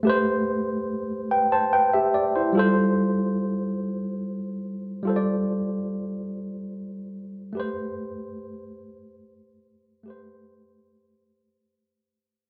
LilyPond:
\new Staff \with { instrumentName = "Tine electric piano" } { \time 6/8 \key g \mixolydian \tempo 4. = 48 << { r4. <b' g''>16 <c'' a''>16 <b' g''>16 <g' e''>16 d''16 <e' c''>16~ | <e' c''>16 r2 r8. | r2. | r2. |
r2. | } \\ { <a g' b' c''>2. | <g f' a' c''>2. | <g f' a' c'' d''>2. | <a g' b' c''>2. |
<a g' b' c''>2. | } >> }